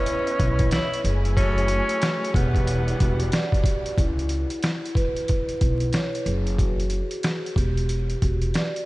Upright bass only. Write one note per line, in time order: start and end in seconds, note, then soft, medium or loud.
0.40 0.68 B1 loud
1.04 1.78 F#1 loud
2.34 2.91 E1 loud
3.00 3.28 E1 medium
3.98 4.44 C#2 loud
5.61 5.89 B1 medium
6.26 7.00 F#1 loud
7.56 8.13 E1 loud
8.22 8.50 E1 medium